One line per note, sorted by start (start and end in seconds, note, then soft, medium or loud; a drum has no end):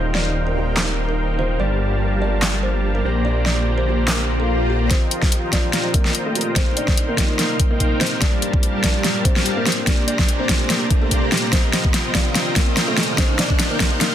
0.00 1.58 D#1 medium
0.00 0.53 D#3 medium
0.00 1.56 D#3 medium
0.00 1.56 A#3 medium
0.00 1.56 C4 medium
0.00 0.53 D#4 medium
0.00 1.57 D#4 medium
0.00 0.54 F4 medium
0.00 0.54 G4 medium
0.00 1.58 G4 medium
0.00 1.57 A#4 medium
0.00 0.13 C5 medium
0.00 0.55 C5 medium
0.00 1.57 C5 medium
0.00 1.57 F5 medium
0.00 1.57 G5 medium
0.15 0.43 D5 medium
0.15 snare medium
0.47 0.74 A#4 medium
0.54 1.36 D#3 medium
0.54 1.36 D#4 medium
0.54 1.37 F4 medium
0.54 1.37 G4 medium
0.58 1.38 C5 medium
0.77 1.05 A#4 medium
0.77 snare loud
0.77 clap medium
1.09 1.36 A#4 medium
1.38 1.57 D#3 medium
1.38 1.57 D#4 medium
1.38 1.57 F4 medium
1.38 1.58 G4 medium
1.38 1.57 C5 medium
1.38 1.58 C5 medium
1.58 3.03 G1 medium
1.58 3.03 F3 medium
1.58 2.18 G3 medium
1.58 3.02 G3 medium
1.58 4.87 A#3 medium
1.58 2.19 D4 medium
1.58 2.19 F4 medium
1.58 4.87 G4 medium
1.58 3.02 G4 medium
1.58 3.02 A#4 medium
1.58 1.88 D5 medium
1.58 3.02 F5 medium
1.58 3.02 A5 medium
1.58 2.20 A5 medium
1.62 2.20 A#4 medium
2.20 3.01 G3 medium
2.20 3.02 D4 medium
2.20 3.02 F4 medium
2.20 3.03 A#4 medium
2.20 2.59 D5 medium
2.20 3.03 A5 medium
2.42 snare loud
2.42 clap medium
2.63 2.91 C5 medium
2.95 3.22 A#4 medium
3.03 4.89 A#1 medium
3.03 3.21 A#2 medium
3.03 4.89 D3 medium
3.03 3.22 A#3 medium
3.03 4.88 A#3 medium
3.03 4.89 C4 medium
3.03 3.23 D4 medium
3.03 4.88 G4 medium
3.03 3.23 G4 medium
3.03 4.88 C5 medium
3.03 3.23 C5 medium
3.03 4.88 D5 medium
3.03 4.88 A#5 medium
3.23 3.84 A#2 medium
3.23 3.84 A#3 medium
3.23 3.85 D4 medium
3.23 3.85 G4 medium
3.23 3.43 D5 medium
3.27 3.86 C5 medium
3.46 3.74 D5 medium
3.46 snare medium
3.78 4.05 C5 medium
3.85 4.67 A#2 medium
3.85 4.67 A#3 medium
3.85 4.68 D4 medium
3.85 4.68 G4 medium
3.85 4.69 C5 medium
4.08 4.36 A#4 medium
4.08 snare loud
4.08 clap medium
4.08 swell medium
4.40 4.67 A4 medium
4.70 4.88 G4 medium
4.89 14.15 A#2 medium
4.89 6.55 D#3 medium
4.89 5.49 F3 medium
4.89 5.19 C4 medium
4.89 6.55 C4 medium
4.89 5.50 F4 medium
4.89 6.55 F4 medium
4.89 5.50 G4 medium
4.89 5.51 A#4 medium
4.89 5.19 C5 medium
4.89 5.50 D#5 medium
4.89 5.51 D#5 medium
4.89 5.50 G5 medium
4.89 kick loud
4.89 snare soft
4.89 closed hi-hat medium
4.89 riser medium
5.11 closed hi-hat medium
5.22 kick loud
5.22 snare soft
5.32 closed hi-hat medium
5.51 6.32 F3 medium
5.51 5.90 D4 medium
5.51 6.33 F4 medium
5.51 6.54 F4 loud
5.51 6.33 G4 medium
5.51 6.34 A#4 medium
5.51 6.54 C5 medium
5.51 5.90 D5 medium
5.51 kick medium
5.51 snare soft
5.51 closed hi-hat medium
5.55 6.34 F5 medium
5.73 snare soft
5.73 closed hi-hat medium
5.94 6.22 A#3 medium
5.94 6.22 A#4 medium
5.94 kick loud
5.94 closed hi-hat medium
6.05 snare soft
6.15 closed hi-hat medium
6.26 6.53 A3 medium
6.26 6.53 A4 medium
6.34 6.53 F3 medium
6.34 6.54 F4 medium
6.34 6.54 G4 medium
6.34 6.54 A#4 medium
6.34 6.54 D#5 medium
6.34 closed hi-hat soft
6.41 closed hi-hat medium
6.54 8.20 C3 medium
6.54 7.15 D#3 medium
6.54 11.49 G3 medium
6.54 6.75 C4 medium
6.54 7.15 D#4 medium
6.54 7.16 D#4 medium
6.54 8.20 D#4 medium
6.54 7.16 F4 medium
6.54 7.16 A#4 medium
6.54 7.16 C5 medium
6.54 6.75 C5 medium
6.54 7.16 F5 medium
6.54 7.16 G5 loud
6.54 kick loud
6.54 snare soft
6.54 closed hi-hat medium
6.58 7.17 C5 medium
6.77 7.05 D4 medium
6.77 7.05 D5 medium
6.77 closed hi-hat medium
6.88 kick loud
6.88 snare soft
6.97 closed hi-hat medium
7.09 7.36 A#3 medium
7.09 7.36 A#4 medium
7.16 7.98 D#3 medium
7.16 7.98 D#4 medium
7.16 7.57 D#4 medium
7.16 7.99 F4 medium
7.16 7.99 G4 medium
7.16 8.00 C5 medium
7.16 kick medium
7.16 snare soft
7.16 closed hi-hat medium
7.39 7.67 A#3 medium
7.39 7.67 A#4 medium
7.39 snare medium
7.39 closed hi-hat medium
7.60 8.19 D#4 medium
7.60 8.19 A#4 medium
7.60 8.19 C5 medium
7.60 8.19 F5 medium
7.60 kick loud
7.60 closed hi-hat medium
7.71 7.98 A#3 medium
7.71 7.98 A#4 medium
7.80 kick medium
7.80 closed hi-hat medium
8.00 8.19 D#3 medium
8.00 8.19 C4 medium
8.00 8.19 D#4 medium
8.00 8.19 F4 medium
8.00 8.20 G4 medium
8.00 8.19 C5 medium
8.00 8.20 C5 medium
8.00 snare medium
8.00 closed hi-hat soft
8.07 closed hi-hat medium
8.19 9.65 A2 medium
8.19 8.80 G3 medium
8.19 8.81 G3 medium
8.19 8.81 D4 medium
8.19 8.50 D4 medium
8.19 8.81 F4 medium
8.19 9.65 F4 medium
8.19 8.50 D5 medium
8.19 8.82 A5 medium
8.19 kick loud
8.19 snare medium
8.19 closed hi-hat medium
8.23 8.82 A#4 medium
8.42 closed hi-hat medium
8.53 kick loud
8.63 closed hi-hat medium
8.82 9.63 G3 medium
8.82 9.65 G3 medium
8.82 9.64 D4 medium
8.82 9.21 D4 medium
8.82 9.64 F4 medium
8.82 9.65 G4 medium
8.82 9.65 A#4 medium
8.82 9.21 D5 medium
8.82 9.65 F5 medium
8.82 9.65 A5 loud
8.82 9.65 A5 medium
8.82 kick medium
8.82 snare medium
8.82 closed hi-hat medium
8.86 9.65 A#4 medium
9.04 snare medium
9.04 closed hi-hat medium
9.25 9.53 C4 medium
9.25 9.53 C5 medium
9.25 kick loud
9.25 closed hi-hat medium
9.36 snare medium
9.46 closed hi-hat medium
9.57 9.84 A#3 medium
9.57 9.84 A#4 medium
9.65 9.84 A#2 medium
9.65 14.15 C3 medium
9.65 9.85 A#3 medium
9.65 9.85 D4 medium
9.65 11.51 D4 medium
9.65 9.85 G4 medium
9.65 9.85 C5 medium
9.65 snare medium
9.65 closed hi-hat soft
9.72 closed hi-hat medium
9.85 10.46 A#2 medium
9.85 10.46 A#3 medium
9.85 10.47 A#3 medium
9.85 10.47 D4 medium
9.85 10.06 D4 medium
9.85 10.47 G4 medium
9.85 10.47 C5 medium
9.85 10.47 D5 medium
9.85 10.06 D5 medium
9.85 10.47 A#5 loud
9.85 kick loud
9.85 snare medium
9.85 closed hi-hat medium
9.89 10.48 C5 medium
10.08 10.36 D4 medium
10.08 10.36 D5 medium
10.08 closed hi-hat medium
10.19 kick loud
10.19 snare medium
10.29 closed hi-hat medium
10.40 10.67 C4 medium
10.40 10.67 C5 medium
10.47 11.29 A#2 medium
10.47 11.29 A#3 medium
10.47 11.30 D4 medium
10.47 10.88 G4 medium
10.47 11.30 G4 medium
10.47 11.31 C5 medium
10.47 kick medium
10.47 snare medium
10.47 closed hi-hat medium
10.70 10.98 A#3 medium
10.70 10.98 A#4 medium
10.70 snare medium
10.70 closed hi-hat medium
10.90 kick loud
10.90 closed hi-hat medium
11.02 11.29 A3 medium
11.02 11.29 A4 medium
11.11 kick medium
11.11 closed hi-hat medium
11.31 11.50 A#2 medium
11.31 11.50 G3 medium
11.31 11.50 A#3 medium
11.31 11.50 D4 medium
11.31 11.50 G4 medium
11.31 11.51 G4 medium
11.31 11.51 C5 medium
11.31 snare medium
11.31 closed hi-hat soft
11.38 closed hi-hat medium
11.51 14.15 D#3 medium
11.51 12.11 F3 medium
11.51 13.17 F3 medium
11.51 11.81 C4 medium
11.51 12.12 F4 medium
11.51 12.13 G4 medium
11.51 12.13 A#4 medium
11.51 11.81 C5 medium
11.51 12.12 C5 medium
11.51 12.12 D#5 medium
11.51 12.12 A#5 medium
11.51 kick loud
11.51 snare medium
11.51 closed hi-hat medium
11.73 snare medium
11.73 closed hi-hat medium
11.85 kick loud
11.94 snare medium
11.94 closed hi-hat medium
12.13 12.94 F3 medium
12.13 12.52 D4 medium
12.13 12.95 F4 medium
12.13 13.16 F4 loud
12.13 12.95 G4 medium
12.13 12.96 A#4 medium
12.13 12.52 D5 medium
12.13 13.16 D#5 medium
12.13 12.96 F5 medium
12.13 13.16 A#5 loud
12.13 kick medium
12.13 snare medium
12.13 closed hi-hat medium
12.35 snare medium
12.35 closed hi-hat medium
12.56 12.84 A#3 medium
12.56 12.84 A#4 medium
12.56 kick loud
12.56 snare medium
12.56 closed hi-hat medium
12.77 snare medium
12.77 closed hi-hat medium
12.88 13.15 A3 medium
12.88 13.15 A4 medium
12.97 13.15 F3 medium
12.97 13.16 F4 medium
12.97 13.16 G4 medium
12.97 13.16 A#4 medium
12.97 13.16 D#5 medium
12.97 snare medium
12.97 closed hi-hat soft
13.03 closed hi-hat medium
13.16 13.77 D#3 medium
13.16 14.15 G3 medium
13.16 13.37 C4 medium
13.16 13.77 D#4 medium
13.16 13.78 D#4 loud
13.16 13.78 F4 medium
13.16 13.78 G4 medium
13.16 13.37 C5 medium
13.16 kick loud
13.16 snare medium
13.16 closed hi-hat medium
13.20 13.79 C5 medium
13.39 13.67 D4 medium
13.39 13.67 D5 medium
13.39 snare medium
13.39 closed hi-hat medium
13.50 kick loud
13.60 snare medium
13.60 closed hi-hat medium
13.71 13.98 A#3 medium
13.71 13.98 A#4 medium
13.78 14.15 D#3 medium
13.78 14.15 D#4 medium
13.78 14.15 F4 medium
13.78 14.15 G4 medium
13.78 14.15 A#4 medium
13.78 14.15 C5 medium
13.78 14.15 F5 medium
13.78 14.15 C6 medium
13.78 kick medium
13.78 snare medium
13.78 closed hi-hat medium
13.82 14.15 C5 medium
14.01 14.15 A#3 medium
14.01 14.15 A#4 medium
14.01 snare medium
14.01 closed hi-hat medium